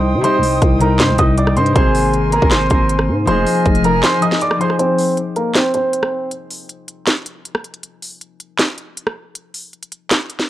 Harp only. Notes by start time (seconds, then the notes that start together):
Already playing: C3 G3 D#4
0.21 C3 G3
0.26 D#4
0.78 C3 G3
0.83 D#4
1.16 C3 G3
1.21 D#4
1.55 C3 G3
1.60 D#4
1.73 A#3 C4
1.77 G#4
2.30 A#3 C4
2.35 G#4
2.39 A#3 C4
2.44 A#4
2.69 A#3 C4
2.74 A#4
3.25 F3 D#4
3.30 G#4
3.83 F3 D#4
3.88 G#4
4.20 F3 D#4
4.25 A#4
4.58 F3 D#4
4.63 G#4